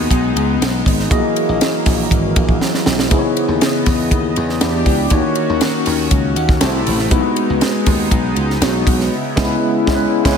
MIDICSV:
0, 0, Header, 1, 5, 480
1, 0, Start_track
1, 0, Tempo, 500835
1, 1065, Time_signature, 4, 2, 24, 8
1, 9943, End_track
2, 0, Start_track
2, 0, Title_t, "Tine electric piano"
2, 0, Program_c, 0, 4
2, 0, Control_c, 0, 64, 127
2, 0, Note_on_c, 0, 59, 85
2, 0, Note_on_c, 0, 63, 82
2, 0, Note_on_c, 0, 66, 80
2, 0, Note_on_c, 0, 68, 89
2, 0, Note_on_c, 0, 75, 96
2, 1016, Note_off_c, 0, 59, 0
2, 1017, Note_off_c, 0, 63, 0
2, 1021, Note_off_c, 0, 66, 0
2, 1022, Note_off_c, 0, 68, 0
2, 1026, Note_off_c, 0, 75, 0
2, 1047, Note_on_c, 0, 58, 84
2, 1055, Note_on_c, 0, 64, 79
2, 1057, Note_on_c, 0, 66, 74
2, 1069, Note_on_c, 0, 68, 81
2, 1074, Note_on_c, 0, 75, 97
2, 1076, Control_c, 0, 64, 0
2, 1247, Control_c, 0, 64, 127
2, 2937, Note_off_c, 0, 58, 0
2, 2940, Note_off_c, 0, 64, 0
2, 2942, Note_off_c, 0, 66, 0
2, 2947, Note_off_c, 0, 68, 0
2, 2950, Note_off_c, 0, 75, 0
2, 2974, Note_on_c, 0, 59, 86
2, 2976, Note_on_c, 0, 63, 77
2, 2985, Note_on_c, 0, 64, 82
2, 2988, Note_on_c, 0, 68, 83
2, 2994, Control_c, 0, 64, 0
2, 2998, Note_on_c, 0, 72, 76
2, 3048, Note_off_c, 0, 72, 0
2, 3055, Note_on_c, 0, 73, 89
2, 3143, Control_c, 0, 64, 127
2, 4389, Note_off_c, 0, 59, 0
2, 4390, Note_off_c, 0, 63, 0
2, 4395, Note_off_c, 0, 64, 0
2, 4397, Note_off_c, 0, 68, 0
2, 4416, Note_on_c, 0, 59, 76
2, 4417, Note_on_c, 0, 62, 70
2, 4422, Note_on_c, 0, 64, 78
2, 4427, Note_on_c, 0, 67, 67
2, 4428, Note_on_c, 0, 74, 82
2, 4430, Note_off_c, 0, 73, 0
2, 4434, Control_c, 0, 64, 0
2, 4587, Control_c, 0, 64, 127
2, 4893, Note_on_c, 0, 58, 89
2, 4899, Note_on_c, 0, 61, 79
2, 4900, Note_off_c, 0, 59, 0
2, 4900, Note_off_c, 0, 62, 0
2, 4902, Note_off_c, 0, 64, 0
2, 4905, Note_off_c, 0, 67, 0
2, 4905, Note_off_c, 0, 74, 0
2, 4906, Note_on_c, 0, 63, 71
2, 4914, Note_on_c, 0, 66, 81
2, 4916, Control_c, 0, 64, 0
2, 4919, Note_on_c, 0, 73, 102
2, 5074, Control_c, 0, 64, 127
2, 6099, Note_on_c, 0, 78, 68
2, 6309, Note_off_c, 0, 58, 0
2, 6312, Note_off_c, 0, 61, 0
2, 6315, Note_off_c, 0, 63, 0
2, 6319, Note_off_c, 0, 66, 0
2, 6322, Note_off_c, 0, 73, 0
2, 6324, Note_off_c, 0, 78, 0
2, 6332, Note_on_c, 0, 57, 77
2, 6333, Note_on_c, 0, 60, 71
2, 6334, Note_on_c, 0, 81, 68
2, 6335, Note_on_c, 0, 62, 55
2, 6340, Note_on_c, 0, 67, 70
2, 6344, Note_on_c, 0, 72, 86
2, 6353, Control_c, 0, 64, 0
2, 6396, Note_off_c, 0, 62, 0
2, 6396, Note_on_c, 0, 64, 70
2, 6521, Control_c, 0, 64, 127
2, 6784, Note_off_c, 0, 81, 0
2, 6806, Note_on_c, 0, 56, 87
2, 6812, Note_on_c, 0, 59, 79
2, 6817, Note_off_c, 0, 57, 0
2, 6817, Note_on_c, 0, 63, 80
2, 6818, Note_off_c, 0, 60, 0
2, 6821, Note_off_c, 0, 67, 0
2, 6822, Note_on_c, 0, 66, 82
2, 6823, Note_off_c, 0, 72, 0
2, 6827, Note_on_c, 0, 71, 93
2, 6837, Control_c, 0, 64, 0
2, 6849, Note_off_c, 0, 64, 0
2, 6980, Control_c, 0, 64, 127
2, 8226, Note_off_c, 0, 56, 0
2, 8229, Note_off_c, 0, 59, 0
2, 8232, Note_off_c, 0, 63, 0
2, 8234, Note_off_c, 0, 66, 0
2, 8237, Note_off_c, 0, 71, 0
2, 8255, Note_on_c, 0, 56, 60
2, 8257, Note_on_c, 0, 59, 56
2, 8259, Note_on_c, 0, 62, 43
2, 8261, Note_on_c, 0, 66, 58
2, 8265, Note_on_c, 0, 73, 64
2, 8319, Note_off_c, 0, 62, 0
2, 8320, Note_on_c, 0, 63, 54
2, 8739, Note_off_c, 0, 56, 0
2, 8741, Note_off_c, 0, 59, 0
2, 8743, Note_off_c, 0, 66, 0
2, 8745, Note_off_c, 0, 73, 0
2, 8755, Control_c, 0, 64, 0
2, 8772, Note_off_c, 0, 63, 0
2, 8914, Control_c, 0, 64, 127
2, 8969, Note_on_c, 0, 56, 110
2, 8973, Note_on_c, 0, 59, 104
2, 8982, Note_on_c, 0, 61, 101
2, 8987, Note_on_c, 0, 64, 109
2, 9051, Note_on_c, 0, 71, 101
2, 9139, Note_off_c, 0, 56, 0
2, 9141, Note_off_c, 0, 59, 0
2, 9146, Note_off_c, 0, 61, 0
2, 9149, Note_off_c, 0, 64, 0
2, 9186, Note_off_c, 0, 71, 0
2, 9453, Note_on_c, 0, 56, 95
2, 9458, Note_on_c, 0, 59, 105
2, 9467, Note_on_c, 0, 61, 97
2, 9470, Note_on_c, 0, 64, 107
2, 9533, Note_on_c, 0, 71, 104
2, 9621, Note_off_c, 0, 56, 0
2, 9624, Note_off_c, 0, 59, 0
2, 9630, Note_off_c, 0, 61, 0
2, 9631, Note_off_c, 0, 64, 0
2, 9667, Note_off_c, 0, 71, 0
2, 9809, Note_on_c, 0, 56, 96
2, 9816, Note_on_c, 0, 59, 102
2, 9820, Note_on_c, 0, 61, 112
2, 9827, Note_on_c, 0, 64, 98
2, 9891, Note_on_c, 0, 71, 101
2, 9943, Note_off_c, 0, 56, 0
2, 9943, Note_off_c, 0, 59, 0
2, 9943, Note_off_c, 0, 61, 0
2, 9943, Note_off_c, 0, 64, 0
2, 9943, Note_off_c, 0, 71, 0
2, 9943, End_track
3, 0, Start_track
3, 0, Title_t, "Analog synth pad"
3, 0, Program_c, 1, 89
3, 0, Note_on_c, 1, 56, 94
3, 0, Note_on_c, 1, 59, 87
3, 0, Note_on_c, 1, 63, 98
3, 1042, Note_off_c, 1, 59, 0
3, 1042, Note_off_c, 1, 63, 0
3, 1044, Note_off_c, 1, 56, 0
3, 1058, Note_on_c, 1, 58, 92
3, 1060, Note_on_c, 1, 54, 83
3, 1062, Note_on_c, 1, 52, 95
3, 2961, Note_off_c, 1, 58, 0
3, 2962, Note_off_c, 1, 54, 0
3, 2986, Note_on_c, 1, 49, 87
3, 2990, Note_on_c, 1, 75, 79
3, 2993, Note_on_c, 1, 59, 90
3, 4388, Note_off_c, 1, 52, 0
3, 4410, Note_off_c, 1, 49, 0
3, 4412, Note_off_c, 1, 75, 0
3, 4413, Note_off_c, 1, 59, 0
3, 4440, Note_on_c, 1, 52, 68
3, 4441, Note_on_c, 1, 67, 88
3, 4444, Note_on_c, 1, 62, 70
3, 4907, Note_off_c, 1, 52, 0
3, 4907, Note_off_c, 1, 67, 0
3, 4908, Note_on_c, 1, 61, 75
3, 4909, Note_off_c, 1, 62, 0
3, 4911, Note_on_c, 1, 66, 96
3, 4914, Note_on_c, 1, 51, 94
3, 6331, Note_off_c, 1, 61, 0
3, 6332, Note_off_c, 1, 66, 0
3, 6334, Note_off_c, 1, 51, 0
3, 6345, Note_on_c, 1, 48, 76
3, 6346, Note_on_c, 1, 64, 76
3, 6350, Note_on_c, 1, 57, 67
3, 6815, Note_on_c, 1, 59, 85
3, 6817, Note_on_c, 1, 63, 103
3, 6819, Note_off_c, 1, 48, 0
3, 6819, Note_on_c, 1, 56, 93
3, 6820, Note_off_c, 1, 64, 0
3, 6822, Note_off_c, 1, 57, 0
3, 8722, Note_off_c, 1, 63, 0
3, 8723, Note_off_c, 1, 56, 0
3, 8737, Note_on_c, 1, 49, 86
3, 8738, Note_on_c, 1, 64, 94
3, 9943, Note_off_c, 1, 49, 0
3, 9943, Note_off_c, 1, 59, 0
3, 9943, Note_off_c, 1, 64, 0
3, 9943, End_track
4, 0, Start_track
4, 0, Title_t, "Slap bass"
4, 0, Program_c, 2, 36
4, 101, Note_on_c, 2, 35, 92
4, 299, Note_off_c, 2, 35, 0
4, 343, Note_on_c, 2, 37, 101
4, 540, Note_off_c, 2, 37, 0
4, 584, Note_on_c, 2, 35, 94
4, 781, Note_off_c, 2, 35, 0
4, 825, Note_on_c, 2, 32, 105
4, 1021, Note_off_c, 2, 32, 0
4, 1066, Note_on_c, 2, 34, 125
4, 1163, Note_off_c, 2, 34, 0
4, 1428, Note_on_c, 2, 34, 101
4, 1524, Note_off_c, 2, 34, 0
4, 1783, Note_on_c, 2, 34, 98
4, 1980, Note_off_c, 2, 34, 0
4, 2024, Note_on_c, 2, 32, 101
4, 2220, Note_off_c, 2, 32, 0
4, 2264, Note_on_c, 2, 34, 86
4, 2460, Note_off_c, 2, 34, 0
4, 2745, Note_on_c, 2, 35, 99
4, 2941, Note_off_c, 2, 35, 0
4, 2983, Note_on_c, 2, 37, 118
4, 3081, Note_off_c, 2, 37, 0
4, 3339, Note_on_c, 2, 39, 95
4, 3439, Note_off_c, 2, 39, 0
4, 3705, Note_on_c, 2, 40, 105
4, 3943, Note_off_c, 2, 40, 0
4, 3943, Note_on_c, 2, 39, 103
4, 4139, Note_off_c, 2, 39, 0
4, 4188, Note_on_c, 2, 40, 89
4, 4382, Note_off_c, 2, 40, 0
4, 4431, Note_on_c, 2, 40, 106
4, 4624, Note_off_c, 2, 40, 0
4, 4656, Note_on_c, 2, 37, 108
4, 4855, Note_off_c, 2, 37, 0
4, 4898, Note_on_c, 2, 39, 125
4, 4998, Note_off_c, 2, 39, 0
4, 5267, Note_on_c, 2, 39, 100
4, 5363, Note_off_c, 2, 39, 0
4, 5624, Note_on_c, 2, 39, 102
4, 5820, Note_off_c, 2, 39, 0
4, 5856, Note_on_c, 2, 37, 97
4, 6103, Note_off_c, 2, 37, 0
4, 6103, Note_on_c, 2, 39, 105
4, 6299, Note_off_c, 2, 39, 0
4, 6345, Note_on_c, 2, 36, 101
4, 6541, Note_off_c, 2, 36, 0
4, 6591, Note_on_c, 2, 33, 109
4, 6784, Note_off_c, 2, 33, 0
4, 6815, Note_on_c, 2, 35, 121
4, 6916, Note_off_c, 2, 35, 0
4, 7187, Note_on_c, 2, 37, 96
4, 7283, Note_off_c, 2, 37, 0
4, 7539, Note_on_c, 2, 39, 99
4, 7737, Note_off_c, 2, 39, 0
4, 7776, Note_on_c, 2, 35, 94
4, 7975, Note_off_c, 2, 35, 0
4, 8019, Note_on_c, 2, 37, 98
4, 8217, Note_off_c, 2, 37, 0
4, 8252, Note_on_c, 2, 35, 106
4, 8453, Note_off_c, 2, 35, 0
4, 8496, Note_on_c, 2, 35, 118
4, 8696, Note_off_c, 2, 35, 0
4, 8983, Note_on_c, 2, 37, 105
4, 9147, Note_off_c, 2, 37, 0
4, 9462, Note_on_c, 2, 37, 114
4, 9627, Note_off_c, 2, 37, 0
4, 9826, Note_on_c, 2, 37, 123
4, 9943, Note_off_c, 2, 37, 0
4, 9943, End_track
5, 0, Start_track
5, 0, Title_t, "Drums"
5, 101, Note_on_c, 9, 36, 95
5, 106, Note_on_c, 9, 44, 73
5, 106, Note_on_c, 9, 51, 74
5, 197, Note_off_c, 9, 36, 0
5, 201, Note_off_c, 9, 44, 0
5, 202, Note_off_c, 9, 51, 0
5, 350, Note_on_c, 9, 51, 73
5, 446, Note_off_c, 9, 51, 0
5, 595, Note_on_c, 9, 51, 101
5, 597, Note_on_c, 9, 38, 127
5, 690, Note_off_c, 9, 51, 0
5, 692, Note_off_c, 9, 38, 0
5, 826, Note_on_c, 9, 36, 99
5, 838, Note_on_c, 9, 46, 68
5, 838, Note_on_c, 9, 51, 64
5, 922, Note_off_c, 9, 36, 0
5, 934, Note_off_c, 9, 46, 0
5, 934, Note_off_c, 9, 51, 0
5, 953, Note_on_c, 9, 38, 36
5, 1049, Note_off_c, 9, 38, 0
5, 1064, Note_on_c, 9, 36, 123
5, 1068, Note_on_c, 9, 51, 73
5, 1069, Note_on_c, 9, 44, 74
5, 1159, Note_off_c, 9, 36, 0
5, 1164, Note_off_c, 9, 44, 0
5, 1164, Note_off_c, 9, 51, 0
5, 1306, Note_on_c, 9, 51, 71
5, 1402, Note_off_c, 9, 51, 0
5, 1543, Note_on_c, 9, 51, 79
5, 1550, Note_on_c, 9, 38, 127
5, 1639, Note_off_c, 9, 51, 0
5, 1646, Note_off_c, 9, 38, 0
5, 1782, Note_on_c, 9, 46, 83
5, 1782, Note_on_c, 9, 51, 65
5, 1785, Note_on_c, 9, 36, 102
5, 1789, Note_on_c, 9, 38, 45
5, 1878, Note_off_c, 9, 46, 0
5, 1878, Note_off_c, 9, 51, 0
5, 1881, Note_off_c, 9, 36, 0
5, 1885, Note_off_c, 9, 38, 0
5, 2023, Note_on_c, 9, 36, 88
5, 2027, Note_on_c, 9, 44, 67
5, 2027, Note_on_c, 9, 51, 70
5, 2119, Note_off_c, 9, 36, 0
5, 2123, Note_off_c, 9, 44, 0
5, 2123, Note_off_c, 9, 51, 0
5, 2263, Note_on_c, 9, 51, 77
5, 2265, Note_on_c, 9, 36, 98
5, 2359, Note_off_c, 9, 51, 0
5, 2361, Note_off_c, 9, 36, 0
5, 2383, Note_on_c, 9, 36, 86
5, 2479, Note_off_c, 9, 36, 0
5, 2506, Note_on_c, 9, 38, 73
5, 2602, Note_off_c, 9, 38, 0
5, 2628, Note_on_c, 9, 38, 62
5, 2724, Note_off_c, 9, 38, 0
5, 2743, Note_on_c, 9, 38, 101
5, 2838, Note_off_c, 9, 38, 0
5, 2866, Note_on_c, 9, 38, 98
5, 2962, Note_off_c, 9, 38, 0
5, 2979, Note_on_c, 9, 51, 76
5, 2980, Note_on_c, 9, 44, 65
5, 2983, Note_on_c, 9, 36, 110
5, 3075, Note_off_c, 9, 44, 0
5, 3075, Note_off_c, 9, 51, 0
5, 3079, Note_off_c, 9, 36, 0
5, 3226, Note_on_c, 9, 51, 65
5, 3322, Note_off_c, 9, 51, 0
5, 3462, Note_on_c, 9, 51, 76
5, 3469, Note_on_c, 9, 38, 127
5, 3558, Note_off_c, 9, 51, 0
5, 3565, Note_off_c, 9, 38, 0
5, 3701, Note_on_c, 9, 46, 76
5, 3701, Note_on_c, 9, 51, 59
5, 3705, Note_on_c, 9, 36, 99
5, 3708, Note_on_c, 9, 38, 40
5, 3796, Note_off_c, 9, 46, 0
5, 3796, Note_off_c, 9, 51, 0
5, 3801, Note_off_c, 9, 36, 0
5, 3803, Note_off_c, 9, 38, 0
5, 3942, Note_on_c, 9, 36, 87
5, 3942, Note_on_c, 9, 44, 72
5, 3943, Note_on_c, 9, 51, 71
5, 4038, Note_off_c, 9, 36, 0
5, 4038, Note_off_c, 9, 44, 0
5, 4039, Note_off_c, 9, 51, 0
5, 4181, Note_on_c, 9, 51, 64
5, 4276, Note_off_c, 9, 51, 0
5, 4306, Note_on_c, 9, 38, 38
5, 4402, Note_off_c, 9, 38, 0
5, 4418, Note_on_c, 9, 51, 100
5, 4420, Note_on_c, 9, 38, 127
5, 4514, Note_off_c, 9, 51, 0
5, 4516, Note_off_c, 9, 38, 0
5, 4657, Note_on_c, 9, 46, 72
5, 4657, Note_on_c, 9, 51, 55
5, 4658, Note_on_c, 9, 36, 86
5, 4753, Note_off_c, 9, 46, 0
5, 4753, Note_off_c, 9, 51, 0
5, 4754, Note_off_c, 9, 36, 0
5, 4890, Note_on_c, 9, 44, 78
5, 4890, Note_on_c, 9, 51, 80
5, 4898, Note_on_c, 9, 36, 105
5, 4985, Note_off_c, 9, 51, 0
5, 4986, Note_off_c, 9, 44, 0
5, 4993, Note_off_c, 9, 36, 0
5, 5131, Note_on_c, 9, 51, 69
5, 5227, Note_off_c, 9, 51, 0
5, 5374, Note_on_c, 9, 51, 83
5, 5381, Note_on_c, 9, 38, 127
5, 5470, Note_off_c, 9, 51, 0
5, 5476, Note_off_c, 9, 38, 0
5, 5614, Note_on_c, 9, 46, 82
5, 5614, Note_on_c, 9, 51, 60
5, 5710, Note_off_c, 9, 46, 0
5, 5710, Note_off_c, 9, 51, 0
5, 5854, Note_on_c, 9, 44, 72
5, 5855, Note_on_c, 9, 51, 82
5, 5858, Note_on_c, 9, 36, 102
5, 5950, Note_off_c, 9, 44, 0
5, 5951, Note_off_c, 9, 51, 0
5, 5953, Note_off_c, 9, 36, 0
5, 6097, Note_on_c, 9, 51, 73
5, 6193, Note_off_c, 9, 51, 0
5, 6218, Note_on_c, 9, 36, 106
5, 6221, Note_on_c, 9, 38, 34
5, 6314, Note_off_c, 9, 36, 0
5, 6317, Note_off_c, 9, 38, 0
5, 6333, Note_on_c, 9, 51, 103
5, 6335, Note_on_c, 9, 38, 127
5, 6429, Note_off_c, 9, 51, 0
5, 6431, Note_off_c, 9, 38, 0
5, 6580, Note_on_c, 9, 46, 74
5, 6580, Note_on_c, 9, 51, 55
5, 6676, Note_off_c, 9, 46, 0
5, 6676, Note_off_c, 9, 51, 0
5, 6696, Note_on_c, 9, 38, 35
5, 6792, Note_off_c, 9, 38, 0
5, 6815, Note_on_c, 9, 44, 70
5, 6815, Note_on_c, 9, 51, 69
5, 6817, Note_on_c, 9, 36, 107
5, 6911, Note_off_c, 9, 44, 0
5, 6911, Note_off_c, 9, 51, 0
5, 6913, Note_off_c, 9, 36, 0
5, 7057, Note_on_c, 9, 51, 72
5, 7153, Note_off_c, 9, 51, 0
5, 7295, Note_on_c, 9, 51, 72
5, 7302, Note_on_c, 9, 38, 127
5, 7391, Note_off_c, 9, 51, 0
5, 7398, Note_off_c, 9, 38, 0
5, 7536, Note_on_c, 9, 46, 88
5, 7536, Note_on_c, 9, 51, 69
5, 7539, Note_on_c, 9, 36, 93
5, 7632, Note_off_c, 9, 46, 0
5, 7632, Note_off_c, 9, 51, 0
5, 7635, Note_off_c, 9, 36, 0
5, 7776, Note_on_c, 9, 44, 59
5, 7777, Note_on_c, 9, 36, 92
5, 7777, Note_on_c, 9, 51, 75
5, 7872, Note_off_c, 9, 36, 0
5, 7872, Note_off_c, 9, 44, 0
5, 7873, Note_off_c, 9, 51, 0
5, 8015, Note_on_c, 9, 51, 69
5, 8111, Note_off_c, 9, 51, 0
5, 8149, Note_on_c, 9, 38, 37
5, 8245, Note_off_c, 9, 38, 0
5, 8259, Note_on_c, 9, 51, 99
5, 8261, Note_on_c, 9, 38, 119
5, 8355, Note_off_c, 9, 51, 0
5, 8357, Note_off_c, 9, 38, 0
5, 8498, Note_on_c, 9, 36, 93
5, 8501, Note_on_c, 9, 46, 67
5, 8501, Note_on_c, 9, 51, 67
5, 8594, Note_off_c, 9, 36, 0
5, 8597, Note_off_c, 9, 46, 0
5, 8597, Note_off_c, 9, 51, 0
5, 8628, Note_on_c, 9, 38, 33
5, 8724, Note_off_c, 9, 38, 0
5, 8981, Note_on_c, 9, 36, 113
5, 8981, Note_on_c, 9, 49, 84
5, 8986, Note_on_c, 9, 38, 127
5, 9077, Note_off_c, 9, 36, 0
5, 9077, Note_off_c, 9, 49, 0
5, 9082, Note_off_c, 9, 38, 0
5, 9463, Note_on_c, 9, 36, 109
5, 9466, Note_on_c, 9, 38, 110
5, 9559, Note_off_c, 9, 36, 0
5, 9561, Note_off_c, 9, 38, 0
5, 9825, Note_on_c, 9, 36, 120
5, 9826, Note_on_c, 9, 49, 89
5, 9831, Note_on_c, 9, 38, 117
5, 9920, Note_off_c, 9, 36, 0
5, 9922, Note_off_c, 9, 49, 0
5, 9927, Note_off_c, 9, 38, 0
5, 9943, End_track
0, 0, End_of_file